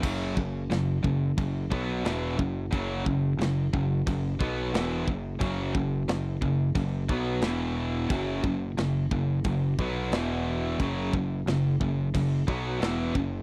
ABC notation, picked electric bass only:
X:1
M:4/4
L:1/8
Q:1/4=89
K:Emix
V:1 name="Picked electric bass" clef=bass
F,,, F,,, F,,, F,,, F,,, B,,, E,,, F,,, | F,,, F,,, F,,, F,,, F,,, B,,, E,,, F,,, | F,,, F,,, F,,, F,,, F,,, B,,, E,,,2 | F,,, F,,, F,,, F,,, F,,, B,,, E,,,2 |
F,,, F,,, F,,, F,,, F,,, B,,, E,,, F,,, |]